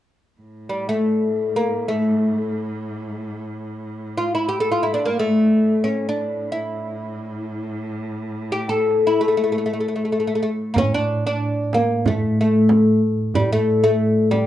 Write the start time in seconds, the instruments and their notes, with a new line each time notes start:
0.40 cello A2
0.69 oud G3
0.89 oud A3
1.56 oud A#3
1.88 oud A3
4.18 oud F4
4.35 oud E4
4.49 oud G4
4.60 oud A4
4.72 oud F4
4.83 oud E4
4.94 oud D4
5.05 oud A#3
5.19 oud A3
5.58 cello A2
5.84 oud C#4
6.09 oud D4
6.52 oud E4
8.52 oud G4
8.69 oud A4
9.07 oud E4
9.21 oud A3
9.28 oud A3
9.37 oud A3
9.44 oud A3
9.52 oud A3
9.58 oud A3
9.66 oud A3
9.73 oud A3
9.80 oud A3
9.88 oud A3
9.96 oud A3
10.05 oud A3
10.12 oud A3
10.20 oud A3
10.27 oud A3
10.35 oud A3
10.43 oud A3
10.74 tine electric piano A2, oud A#3, frame drum, darbuka dum
10.78 oud C#4
10.94 oud D4
11.09 darbuka ka
11.27 oud D4
11.73 oud A#3, darbuka tek, frame drum
12.05 tine electric piano A2, oud A3, darbuka dum, frame drum
12.38 oud A3, darbuka ka
12.69 darbuka tek, frame drum
13.02 darbuka ka
13.18 darbuka ka
13.34 tine electric piano A2, oud G3, darbuka dum, frame drum
13.53 oud A3
13.84 oud A3
14.31 oud G3, frame drum